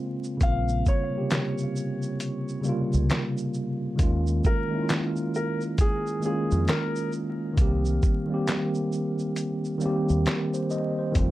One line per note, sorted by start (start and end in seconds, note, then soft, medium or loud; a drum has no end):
0.00 0.37 C#3 medium
0.00 0.43 G#3 medium
0.00 0.41 A#3 medium
0.00 0.43 C4 medium
0.00 0.42 F4 loud
0.24 shaker medium
0.37 0.84 C#3 medium
0.37 0.85 G3 medium
0.37 0.86 A#3 medium
0.37 kick loud
0.37 closed hi-hat medium
0.37 shaker medium
0.41 0.82 A#1 loud
0.41 0.87 C4 medium
0.41 0.88 F4 medium
0.41 0.83 F5 medium
0.68 shaker soft
0.86 3.35 C#5 medium
0.86 kick medium
0.86 shaker medium
1.10 1.14 C3 medium
1.10 2.13 G3 medium
1.10 2.14 A#3 medium
1.16 2.15 C3 medium
1.16 2.16 C#3 medium
1.16 2.16 G4 medium
1.31 snare loud
1.31 clap medium
1.31 closed hi-hat medium
1.31 shaker medium
1.58 shaker soft
1.76 shaker medium
2.02 shaker soft
2.20 closed hi-hat medium
2.20 shaker medium
2.49 shaker soft
2.61 3.52 C#3 medium
2.61 3.53 G3 medium
2.61 3.54 A#3 medium
2.61 shaker soft
2.67 3.55 C3 medium
2.67 3.56 F4 loud
2.93 3.09 C#2 medium
2.93 shaker soft
3.10 snare loud
3.10 clap medium
3.10 closed hi-hat medium
3.10 shaker medium
3.37 shaker medium
3.54 shaker soft
3.96 4.40 D#2 loud
3.96 4.42 D#3 medium
3.96 4.43 G#3 medium
3.96 4.44 A#3 medium
3.96 kick loud
3.96 closed hi-hat medium
3.96 shaker medium
4.02 4.45 C#4 medium
4.02 4.46 F4 medium
4.27 shaker soft
4.44 4.86 A#4 medium
4.44 kick medium
4.44 shaker medium
4.68 5.70 D#3 medium
4.68 5.71 G#3 medium
4.68 5.72 A#3 medium
4.74 5.73 C#4 medium
4.74 4.79 E4 medium
4.82 5.77 F4 medium
4.89 snare loud
4.89 clap medium
4.89 closed hi-hat medium
4.89 shaker medium
5.16 shaker soft
5.34 5.60 A#4 medium
5.34 shaker medium
5.61 shaker soft
5.78 6.20 G#4 medium
5.78 kick loud
5.78 closed hi-hat medium
5.78 shaker medium
6.07 shaker soft
6.19 7.10 D#3 medium
6.19 7.11 G#3 medium
6.19 7.12 A#3 medium
6.19 shaker soft
6.25 7.13 C#4 medium
6.25 7.14 F4 medium
6.25 6.65 G#4 medium
6.51 6.67 F2 medium
6.51 shaker soft
6.68 7.10 A#4 medium
6.68 snare loud
6.68 clap medium
6.68 closed hi-hat medium
6.68 shaker medium
6.96 shaker medium
7.12 shaker soft
7.54 8.00 D#3 medium
7.54 8.01 G3 medium
7.54 8.02 A#3 medium
7.54 kick loud
7.58 7.99 C2 loud
7.58 8.03 C4 medium
7.58 8.04 G4 loud
7.58 closed hi-hat medium
7.58 shaker medium
7.85 shaker soft
8.03 kick medium
8.03 shaker medium
8.26 9.29 D#3 medium
8.26 9.30 G3 medium
8.26 9.31 A#3 medium
8.32 9.32 C4 medium
8.32 9.32 G4 loud
8.47 snare loud
8.47 clap medium
8.47 closed hi-hat medium
8.47 shaker medium
8.74 shaker soft
8.92 shaker medium
9.19 shaker soft
9.36 closed hi-hat medium
9.36 shaker medium
9.65 shaker soft
9.78 10.69 D#3 medium
9.78 10.70 G3 medium
9.78 10.71 A#3 medium
9.78 shaker soft
9.84 10.72 C4 medium
9.84 10.73 G4 loud
10.09 10.25 D#2 medium
10.09 shaker soft
10.26 snare loud
10.26 clap medium
10.26 closed hi-hat medium
10.26 shaker medium
10.54 10.70 C5 medium
10.54 shaker medium
10.70 10.98 C5 medium
10.70 10.97 D#5 medium
10.70 shaker soft
10.99 11.31 C5 medium
11.12 11.31 D#3 medium
11.12 11.31 G3 medium
11.12 11.31 A3 medium
11.12 kick loud
11.12 closed hi-hat medium
11.12 shaker medium
11.16 11.31 F1 loud
11.16 11.31 C4 medium
11.16 11.31 F4 medium